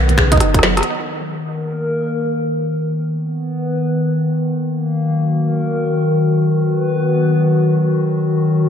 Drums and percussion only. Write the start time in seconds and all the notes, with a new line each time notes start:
0.09 closed hi-hat
0.18 finger snap, kick
0.32 kick, closed hi-hat
0.37 kick, cross-stick, closed hi-hat
0.54 kick, closed hi-hat
0.59 cross-stick
0.63 snare
0.77 cross-stick, closed hi-hat
0.79 cross-stick
0.81 cross-stick, closed hi-hat
0.91 closed hi-hat